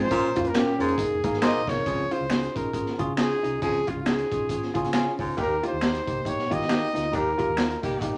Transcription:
0.01 A1 C5
0.10 A#2 A#3 C#4 F4 A#4, kick, closed hi-hat
0.35 F2 A#3 C#4 F4 A#4, kick, closed hi-hat
0.45 A#4, closed hi-hat
0.53 A#2 A#3 C#4 F4 G4 A#4, finger snap, snare, closed hi-hat
0.79 F2 G#2 A#3 C#4 F4 G#4 A#4, closed hi-hat
0.88 closed hi-hat
0.98 G#1 A#3 D#4 G#4 A#4, kick, closed hi-hat
1.11 F1
1.24 G1 A#3 D#4 G#4 A#4, kick, closed hi-hat
1.33 G#1, snare
1.42 A#3 D#4 G#4 C5 D#5, finger snap, snare, closed hi-hat
1.55 A#1
1.67 C2 F2 A#3 D#4 G#4 A#4 C#5, kick, snare, closed hi-hat
1.85 C#2 F2 C#4 F4 G#4, kick, closed hi-hat
2.11 C#4 F4 G#4 C5, closed hi-hat
2.20 C#2
2.30 C#4 D#4 F4 G#4, finger snap, snare, closed hi-hat
2.43 closed hi-hat
2.55 A#1 C#4 F4 G#4 A#4, kick, closed hi-hat
2.73 G#1 C#4 F4 G#4, kick, closed hi-hat
2.86 snare
2.98 C#3 C#4 F4 G#4, kick, closed hi-hat
3.17 C#4 D#4 F4 G#4, finger snap, snare, closed hi-hat
3.43 C2 C#4 D#4 F4 G#4, closed hi-hat
3.62 C#2 F2 C#4 F4 G#4, kick, closed hi-hat
3.87 C#4 F4 G#4, kick, closed hi-hat
3.96 C#2
4.06 C#4 D#4 F4 G#4, finger snap, snare, closed hi-hat
4.19 closed hi-hat
4.32 A#1 C#4 F4 G#4, kick, closed hi-hat
4.49 G#1 C#4 F4 G#4, kick, closed hi-hat
4.63 snare
4.74 C#3 C#4 F4 G#4, kick, closed hi-hat
4.85 snare, closed hi-hat
4.93 C#4 F4 G#4, finger snap, snare, closed hi-hat
5.19 C#2 G#2 C#4 F4 G#4, kick, open hi-hat
5.37 D#2 A#3 D#4 G4, kick, closed hi-hat
5.41 A#4
5.63 A#3 D#4 F4 G4, closed hi-hat
5.67 C5
5.72 D#2
5.81 A#3 D#4 G4, finger snap, snare, closed hi-hat
5.94 closed hi-hat
6.06 C2 A#3 D#4 G4, kick, closed hi-hat
6.25 A#1 A#3 D#4 G4 C#5, kick, closed hi-hat
6.39 snare
6.50 D#3 A#3 D#4 F4 G4 D#5, kick, closed hi-hat
6.61 snare
6.68 A#3 D#4 G4, finger snap, snare, closed hi-hat
6.93 D2 A#3 D#4 F4, snare, closed hi-hat
7.12 D#2 A#3 D#4 G4 A#4, kick, closed hi-hat
7.37 A#3 D#4 F4 G4, kick, closed hi-hat
7.48 D#2
7.56 D#3 A#3 D#4 F4 G4, finger snap, snare, closed hi-hat
7.70 closed hi-hat
7.82 C2 D#3 A#3 D#4 G4, kick, closed hi-hat
8.01 A#1 A#3 D#4 G4, kick, closed hi-hat

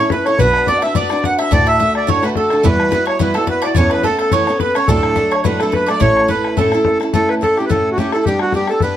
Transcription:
Already playing: A4 C#5
0.00 C#4 E4 C#5
0.10 B4, bodhran
0.25 E4 A4 C#5, bodhran
0.29 C#4
0.37 B1 B3 D4 F#4 B4, bodhran
0.42 B4
0.54 bodhran
0.67 B3 D4 F#4 D5, bodhran
0.71 B4
0.78 E5 F#5, bodhran
0.82 D4 F#4 B4 E5
0.95 B3 D4 F#4 B4 D5, bodhran
1.09 D4 F#4 B4, bodhran
1.23 F#5, bodhran
1.37 F#4 B4 E5, bodhran
1.41 D4
1.51 D2 A2 D3 A3 D4 F#4 D5, bodhran
1.60 bodhran
1.67 E5, bodhran
1.79 D3 A3 D4 F#4 E5, bodhran
1.94 D5, bodhran
2.07 D2 A2 D3 A3 D4 F#4 C#5, bodhran
2.22 D3 A3 D4 F#4 B4, bodhran
2.35 A4, bodhran
2.50 D3 A3 D4 F#4, bodhran
2.63 E2 E3 G3 B3 E4 F#4 B4, bodhran
2.80 bodhran
2.91 G3 B3 E4 F#4 B4, bodhran
3.05 C#5, bodhran
3.19 E3 G3 B3 E4 F#4 B4, bodhran
3.34 B3 E4 F#4 A4, bodhran
3.47 B4, bodhran
3.62 E4 F#4 D5, bodhran
3.66 B3
3.75 E2 E3 A3 B3 C#4 A4 C#5, bodhran
3.83 bodhran
3.90 B4, bodhran
4.03 A3 B3 C#4 A4, bodhran
4.19 A4, bodhran
4.31 E3 A3 B3 C#4 A4 C#5, bodhran
4.46 B3 C#4 A4 C#5, bodhran
4.58 B4, bodhran
4.75 B3 C#4 A4 C#5, bodhran
4.88 D2 A2 F#3 A3 D4 A4, bodhran
4.97 bodhran
5.03 bodhran
5.16 F#3 A3 D4 A4, bodhran
5.31 C#5, bodhran
5.42 D2 A2 F#3 D4 B4 C#5, bodhran
5.46 A3 A4
5.60 F#3 A3 D4 A4, bodhran
5.72 B4, bodhran
5.86 A3 D4 A4 D5, bodhran
5.91 F#3
6.00 A1 A2 A3 C#4 E4 A4 C#5, bodhran
6.09 bodhran
6.17 bodhran
6.28 A3 C#4 E4 A4 B4, bodhran
6.44 bodhran
6.57 A2 A3 C#4 E4 A4, bodhran
6.72 C#4 E4 A4, bodhran
6.85 bodhran
7.00 C#4 E4 A4, bodhran
7.13 A2 A3 C#4 E4 A4, bodhran
7.29 B4, bodhran
7.41 A3 C#4 E4 A4, bodhran
7.57 C#4 E4 G4 A4, bodhran
7.65 A2 B4
7.70 A3 C#4 E4 A4, bodhran
7.78 bodhran
7.91 F#4
7.97 A3 C#4 E4 G4 A4, bodhran
8.12 C#4 E4 A4, bodhran
8.25 G3 B3 D4 G4, bodhran
8.39 F#4, bodhran
8.52 G3 B3 D4 G4, bodhran
8.57 G4
8.68 D4 G4 A4, bodhran
8.72 B3
8.80 G3 B3 D4 B4, bodhran
8.84 G4, bodhran

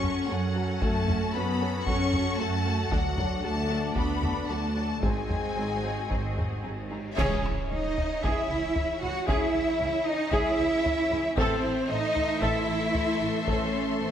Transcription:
Already playing: F#2 C#4 F#4 A4 F#5 C#6
0.02 F#3 C#4 F#4 A4, taiko low-mid
0.28 F#2 F#3 C#4 F#4 A4 F#5
0.55 F#3 C#4 F#4 A4
0.80 F#2 F#3 A3 C#4 F#4 A4 A5, taiko
1.08 F#3 C#4 F#4 A4, taiko low-mid
1.34 F#2 F#3 B3 C#4 F#4 A4 B5
1.60 F#3 C#4 F#4 A4
1.86 F#2 F#3 C#4 F#4 A4 C#6, taiko
2.12 F#3 C#4 F#4 A4, taiko low-mid
2.38 F#2 F#3 A3 C#4 F#4 A4 A5
2.65 F#3 C#4 F#4 A4
2.90 D2 F#3 D4 F#4 A4 F#5, taiko
3.17 F#3 D4 F#4 A4, taiko low-mid
3.43 D2 F#3 A3 D4 F#4 A4 A5
3.69 F#3 D4 F#4 A4
3.95 D2 F#3 B3 D4 F#4 A4 B5, taiko
4.23 F#3 D4 F#4 A4, taiko low-mid
4.49 D2 F#3 A3 D4 F#4 A4 A5
4.76 F#3 D4 F#4 A4
5.01 G#1 F#3 G#3 C4 D#4 F#4 G#4 D#5 G#5, taiko
5.28 F#3 C4 D#4 G#4, taiko low-mid
5.56 G#1 F#3 C4 D#4 G#4
5.82 F#3 C4 D#4 G#4
6.09 G#1 F#3 C4 D#4 G#4, taiko
6.36 F#3 C4 D#4 G#4, taiko low-mid
6.63 G#1 F#3 C4 D#4 G#4
6.90 F#3 C4 D#4 G#4
7.15 C#2 C#3 E3 C#4 G#4 C#5 E5, concert bass drum, taiko, crash, impact
7.43 C#2 E4, taiko rim
7.70 C#2 C#4 D#4 D#5
7.98 taiko low
8.22 C#2 C#3 C#4 E4 G#4 E5, taiko
8.49 C#2 E4
8.76 taiko low
9.01 C#2 E4 F#4 F#5
9.27 C#2 C#3 C#4 E4 G#4 E5, taiko
9.54 C#2 E4
9.80 C#2 C#4
10.07 D#4 D#5
10.32 C#2 C#3 C#4 E4 G#4 E5, taiko
10.59 C#2 E4
10.86 taiko low
11.11 C#2 E4
11.36 A1 E3 A3 C4 A4 C5 E5 C6, taiko
11.62 A1 E4
11.90 A1 C4 D#4 D#5
12.16 taiko low
12.41 A1 E3 C4 E4 A4 E5, taiko
12.68 A1 E4
12.95 taiko low
13.21 A1 E4
13.46 A1 E3 C4 C#4 A4 C#5, taiko
13.74 A1 E4
13.99 A1 C4 C5

